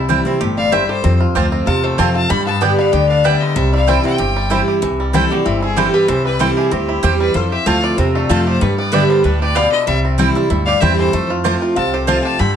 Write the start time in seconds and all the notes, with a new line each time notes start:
Already playing: C2 C3 E4
0.09 E3 G3 C4 E4 C5 G5
0.25 C4 E4
0.41 G1 A2 G4
0.57 G3 D5 F5
0.72 G2 C4 E4 C5 E5 G5
0.89 G4 A4 C5
1.04 F2 C4
1.21 F4
1.35 D2 F3 A3 C4 F4 G4 C5 A5
1.52 C4
1.66 E2 C3 F4 F5 A5
1.83 A3 A4 C5
1.98 F2 F3 A3 C4 F4 C5 F5 A5
2.15 F4 F5 A5
2.29 G2 G3 G5 B5
2.46 B3 F5 A5
2.61 D3 G3 B3 D4 G4 D5 G5
2.78 B3 D5 F5
2.92 D2 D3 G4 D5 G5
3.09 D4 D5 F5
3.24 D3 G3 B3 G4 B4 D5 E5 G5
3.41 D3 B4 D#5
3.56 C2 C3 G3 C5 E5
3.72 E4 D5 F5
3.87 E3 G3 C4 E4 C5 E5 G5
4.04 C4 E4 E5 G5
4.18 G1 G2 G4
4.36 G3
4.50 E3 G3 C4 E4 C5 G5
4.68 G4
4.82 C2 C3 E3
5.00 G3
5.13 E3 G3 C4 E4 A4 C5 G5
5.30 C4 D4 E4 F#4 G4
5.45 G1 G2 C4 E4 G4
5.62 E4 G#4
5.76 E3 G3 C4 E4 G4 A4 C5 G5
5.94 G3 G4 B4
6.08 C2 C3 E3 G4 C5
6.25 G3 G4 B4
6.39 E3 G3 C4 E4 A4 C5 G5
6.57 E4 G4 G#4
6.71 D2 G2 C4 E4 G4
6.89 E4
7.03 E2 E3 G3 C4 E4 G4 C5 G5
7.20 G3 G4 B4
7.34 F2 F4 A4 C5
7.52 G4 C5 E5
7.66 D2 F3 A3 C4 F4 C5 F5 A5
7.83 F4 B4 D5
7.98 E2 C3 C4 A4 C5
8.15 A3 D4 F4
8.29 F2 F3 A3 C4 F4 A4 C5 A5
8.46 G4 A4 C5
8.61 G2 G3 G4 B4
8.78 B3 B4 D5
8.92 D3 G3 B3 D4 G4 B4 D5 E5 G5
9.09 G3 A4 C5
9.23 D2 A2 D4 G4 B4
9.40 G4 B4 D5
9.55 B2 G3 B3 G4 D5 F5 G5
9.72 D3 B4 D#5
9.87 C2 C3 G3 C5 E5
10.05 C4
10.18 E3 G3 C4 E4 C5 G5
10.35 G3 C4 E4
10.50 D2 G2 E4
10.66 G4 D5 F5
10.81 E2 E3 G3 C4 E4 C5 E5 G5
10.98 E3 A4 C5
11.13 F2 A3
11.30 F4
11.44 F3 A3 C4 F4 G4 C5 A5
11.62 F4
11.76 C2 C3 C4 F5 A5
11.93 G4 A4 C5
12.07 F3 A3 C4 F4 C5 F5 A5
12.24 G4 F5 A5
12.39 G2 D3 G5 B5